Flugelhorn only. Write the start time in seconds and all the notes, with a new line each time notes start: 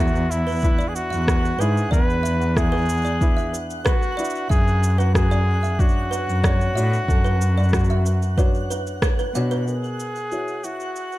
Already playing: F#4
0.30 E4
0.88 G#4
0.95 F#4
1.60 G#4
1.92 B4
2.57 G#4
3.86 F#4
4.50 G#4
4.99 F#4
5.15 G#4
5.80 F#4
9.67 G#4
10.64 F#4